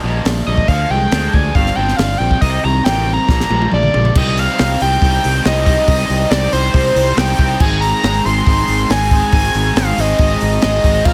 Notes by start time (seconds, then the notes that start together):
Already playing: A#2
0.04 A#1 G3 A#3 D4
0.25 A#1 G3 A#3 D4, snare, open hi-hat
0.46 A#1 D3 G3 A#3 D#5
0.57 kick
0.67 D2 D3 F3 G#3 D4 F5, kick, open hi-hat
0.90 C2 F3 G#3 G5
1.12 D2 F3 G#3 D4, snare, open hi-hat
1.33 D2 F3 G#3 D4 G#5, kick
1.55 G1 G2 G3 C4 D4 F5, kick, open hi-hat
1.66 snare
1.76 G1 G3 C4 D4 G5
1.88 snare
1.96 G1 D4 F5, snare, open hi-hat
2.01 G3 C4
2.18 A#1 G3 G5
2.22 C4
2.31 kick
2.41 C2 C3 G3 C4 D#4 D#5, kick, open hi-hat
2.64 C2 D#3 G3 C4 A#5
2.84 A1 G3 A#3 C4 D#4 G5, snare, open hi-hat
3.07 G3 C4
3.14 A#5
3.28 A#1 A#2 G3 A#3 D4 A#5, kick, snare
3.40 snare
3.50 A#1 G3 A#3 D4, high tom
3.62 high tom
3.72 A#1 G3 A#3 D4 D5, mid tom
3.83 mid tom
3.94 A#1 D3 G3 A#3, floor tom
4.05 floor tom
4.15 C2 C3 G3 C4 D#4 G4 D#5, kick, crash
4.37 F5, open hi-hat
4.59 C2 C3 G3 C4 D#4 G4, snare, open hi-hat
4.80 C2 C3 G3 C4 D#4 G4 G5, open hi-hat
5.02 C2 C3 G3 C4 D#4 G4, kick, open hi-hat
5.24 C2, open hi-hat
5.45 C2 C3 G3 C4 D#4 G4 D#5, snare, open hi-hat
5.66 C3 G3 C4 D#4 G4, kick, open hi-hat
5.88 C2 C3 G3 C4 D#4 G4 D#5, kick, open hi-hat
6.10 C2, open hi-hat
6.30 C2 C3 G3 C4 D#4 G4 D5, snare, open hi-hat
6.52 C2 C3 G3 C4 D#4 G4 C5, open hi-hat
6.74 C2 C3 G3 C4 D#4 G4, kick, open hi-hat
6.96 C2, open hi-hat
7.17 C2 C3 G3 C4 D#4 G4 G5, snare, open hi-hat
7.38 C2 C3 G3 C4 D#4 G4, kick, open hi-hat
7.60 G#1 G#2 D#3 G#3 C4 D#4 G#4 G#5, kick, crash
7.81 A#5, open hi-hat
8.03 G#1 G#2 D#3 G#3 C4 D#4 G#4, snare, open hi-hat
8.25 G#1 G#2 D#3 G#3 C4 D#4 G#4 C6, open hi-hat
8.46 G#1 G#2 D#3 G#3 C4 D#4 G#4, kick, open hi-hat
8.68 G#1, open hi-hat
8.90 G#1 G#2 D#3 G#3 C4 D#4 G#4 G#5, snare, open hi-hat
9.11 G#2 D#3 G#3 C4 D#4 G#4, kick, open hi-hat
9.32 G#1 G#2 D#3 G#3 C4 D#4 G#4 G#5, kick, open hi-hat
9.54 G#1, open hi-hat
9.75 G#1 G#2 D#3 G#3 C4 D#4 G#4 F5, snare, open hi-hat
9.98 G#1 G#2 D#3 G#3 C4 D#4 G#4 D#5, open hi-hat
10.18 G#1 G#2 D#3 G#3 C4 D#4 G#4, kick, open hi-hat
10.40 G#1, open hi-hat
10.62 G#1 G#2 D#3 G#3 C4 D#4 G#4 D#5, snare, open hi-hat
10.84 G#1 G#2 D#3 G#3 C4 D#4 G#4, kick, open hi-hat
11.05 A#1 F3 A#3 C4 F4 A#4 F5, kick, crash